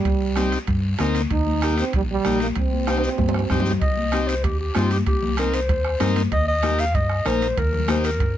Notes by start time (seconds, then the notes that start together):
Already playing: G3
0.05 C2, bombo low, high conga, high timbale, long guiro
0.36 C4 D#4 G4, bombo rim, high conga, high timbale, short guiro
0.52 high timbale, short guiro
0.67 G2, bombo low, high timbale, long guiro
0.99 D2 C4 D#4 A#4, bombo rim, high conga, high timbale, low timbale, short guiro
1.15 high conga, high timbale, short guiro
1.30 D#2 D#4, bombo low, high conga, high timbale, long guiro
1.47 high conga
1.62 A#3 D#4 G4, bombo rim, high conga, high timbale, short guiro
1.78 C4, high timbale, short guiro
1.93 A#1 G3, bombo low, high conga, high timbale, long guiro
2.11 G3
2.25 A#1 A#3 D#4 G4, bombo rim, high conga, high timbale, low timbale, short guiro
2.40 A#3, high conga, high timbale, short guiro
2.55 C2 C4, bombo low, high timbale, long guiro
2.72 high conga
2.87 C4 D#4 G4, bombo rim, high conga, high timbale, short guiro
2.97 high timbale
3.04 low timbale, short guiro
3.18 G2, bombo low, high conga, low timbale, long guiro
3.29 low timbale
3.34 bombo rim, low conga
3.39 low timbale
3.49 G2 C4 D#4 G4, bombo low, bombo rim, low conga, short guiro
3.60 low timbale
3.65 low conga, short guiro
3.71 low timbale
3.81 C2 D#5, bombo low, high conga, high timbale, long guiro
3.97 high conga
4.12 C4 D#4 G4, bombo rim, high conga, high timbale, short guiro
4.28 C5, high timbale, short guiro
4.44 D#2 G4, bombo low, high conga, high timbale, long guiro
4.60 G4
4.75 G2 C4 D#4 F4 G4, bombo rim, high conga, high timbale, low timbale, short guiro
4.91 G4, high conga, high timbale, short guiro
5.06 C2 G4, bombo low, high conga, high timbale, long guiro
5.22 high conga, low conga
5.37 C4 D#4 A#4, bombo rim, high conga, high timbale, short guiro
5.54 C5, high timbale, short guiro
5.69 D#2, bombo low, high conga, high timbale, long guiro
5.85 bombo rim
6.00 G2 C4 D#4 A#4, bombo rim, high conga, low conga, high timbale, low timbale, short guiro
6.16 high conga, high timbale, short guiro
6.32 D#2 D#5, bombo low, high conga, high timbale, long guiro
6.48 D#5
6.63 A#3 D#4 G4, bombo rim, high conga, high timbale, short guiro
6.79 F5, high timbale, short guiro
6.94 G2 D#5, bombo low, high conga, high timbale, long guiro
7.09 bombo rim
7.25 A#1 A#3 D#4 A#4 C5, bombo rim, high conga, high timbale, short guiro
7.41 high conga, high timbale, short guiro
7.57 D#2 A#4, bombo low, high conga, high timbale, long guiro
7.72 low conga
7.88 A#3 D#4 G4 C5, bombo rim, high conga, high timbale, short guiro
8.04 A#4, high timbale, short guiro
8.20 G2, bombo low, high conga, high timbale, long guiro